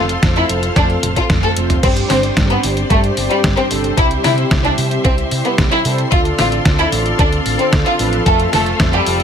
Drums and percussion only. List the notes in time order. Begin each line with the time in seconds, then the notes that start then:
0.09 closed hi-hat
0.23 kick, snare, closed hi-hat
0.36 closed hi-hat
0.49 closed hi-hat
0.63 closed hi-hat
0.76 kick, snare, closed hi-hat
0.90 closed hi-hat
1.03 closed hi-hat, high tom
1.16 kick, closed hi-hat
1.30 kick, snare, closed hi-hat, mid tom
1.43 closed hi-hat, mid tom
1.57 closed hi-hat
1.70 closed hi-hat, mid tom
1.83 kick, closed hi-hat, crash
1.97 closed hi-hat
2.10 snare, open hi-hat
2.23 closed hi-hat
2.37 kick, snare, closed hi-hat
2.50 closed hi-hat
2.63 open hi-hat
2.77 closed hi-hat
2.90 kick, closed hi-hat
3.04 closed hi-hat
3.17 open hi-hat
3.31 closed hi-hat
3.44 kick, snare, closed hi-hat
3.57 closed hi-hat
3.71 open hi-hat
3.84 closed hi-hat
3.97 kick, closed hi-hat
4.11 closed hi-hat
4.24 snare, open hi-hat
4.38 closed hi-hat
4.51 kick, snare, closed hi-hat
4.65 closed hi-hat
4.78 open hi-hat
4.91 closed hi-hat
5.05 kick, closed hi-hat
5.18 closed hi-hat
5.31 open hi-hat
5.45 closed hi-hat
5.58 kick, snare, closed hi-hat
5.72 closed hi-hat
5.85 open hi-hat
5.98 closed hi-hat
6.12 kick, closed hi-hat
6.25 closed hi-hat
6.39 snare, open hi-hat
6.52 closed hi-hat
6.65 kick, snare, closed hi-hat
6.79 closed hi-hat
6.92 open hi-hat
7.06 closed hi-hat
7.19 kick, closed hi-hat
7.33 closed hi-hat
7.46 open hi-hat
7.59 closed hi-hat
7.73 kick, snare, closed hi-hat
7.86 closed hi-hat
7.99 open hi-hat
8.13 closed hi-hat
8.26 kick, closed hi-hat
8.40 closed hi-hat
8.53 snare, open hi-hat
8.66 closed hi-hat
8.80 kick, snare, closed hi-hat
8.93 closed hi-hat
9.06 open hi-hat
9.20 closed hi-hat